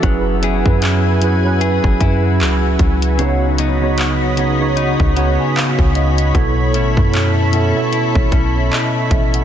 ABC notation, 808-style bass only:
X:1
M:4/4
L:1/16
Q:"Swing 16ths" 1/4=76
K:F#m
V:1 name="808-style bass" clef=bass
F,,,3 F,,6 F,,, F,,2 C,,2 C,,2- | C,,8- C,, C,,2 z2 C,,3 | B,,,2 A,,, F,,4 z2 A,,, B,,,2 z2 A,,,2 |]